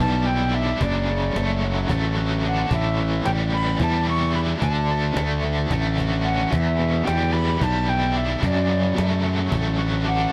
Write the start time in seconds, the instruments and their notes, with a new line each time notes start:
Already playing: overdriven electric guitar E2 B2 E3
0.00 fingered electric bass B1, overdriven electric guitar G3, flute A5
0.26 overdriven electric guitar E4, flute G5
0.54 overdriven electric guitar D4, flute E5
0.81 fingered electric bass F#1, overdriven electric guitar F#2, flute D5, cajon bass
1.10 overdriven electric guitar C#3
1.36 fingered electric bass F#1, overdriven electric guitar A3, cajon slap
1.64 overdriven electric guitar F#3
1.89 fingered electric bass A1, overdriven electric guitar A3, cajon bass
2.17 overdriven electric guitar F#4
2.46 overdriven electric guitar D4, flute F#5
2.71 fingered electric bass A1, overdriven electric guitar A2, flute E5, cajon bass
2.97 overdriven electric guitar E3, cajon slap
3.25 fingered electric bass A1, overdriven electric guitar G3, flute G5, cajon slap
3.53 overdriven electric guitar E3, flute B5
3.80 fingered electric bass E2, overdriven electric guitar G3, flute A5, cajon bass
4.07 overdriven electric guitar E4, flute C#6
4.35 overdriven electric guitar D4, flute B5
4.61 fingered electric bass D2, overdriven electric guitar D3, flute A5, cajon bass
4.91 overdriven electric guitar A3
5.16 fingered electric bass D2, overdriven electric guitar A3, cajon slap
5.43 overdriven electric guitar D3, cajon slap
5.71 fingered electric bass A1, overdriven electric guitar A3, cajon bass
5.98 overdriven electric guitar F#4, cajon bass
6.25 overdriven electric guitar C#4, flute F#5
6.51 fingered electric bass E2, overdriven electric guitar E2, flute E5, cajon bass
6.79 overdriven electric guitar B2
7.05 fingered electric bass E2, overdriven electric guitar G3, flute G5, cajon slap
7.33 overdriven electric guitar E3, flute B5, cajon slap
7.61 fingered electric bass B1, overdriven electric guitar G3, flute A5, cajon bass
7.89 overdriven electric guitar E4, flute G5
8.15 overdriven electric guitar D4, flute E5
8.42 overdriven electric guitar F#2, fingered electric bass F#2, flute D5, cajon bass
8.69 overdriven electric guitar C#3
8.96 fingered electric bass F#2, overdriven electric guitar A3, cajon slap
9.22 overdriven electric guitar F#3
9.52 fingered electric bass A1, overdriven electric guitar A3, cajon bass
9.78 overdriven electric guitar F#4
10.06 overdriven electric guitar D4, flute F#5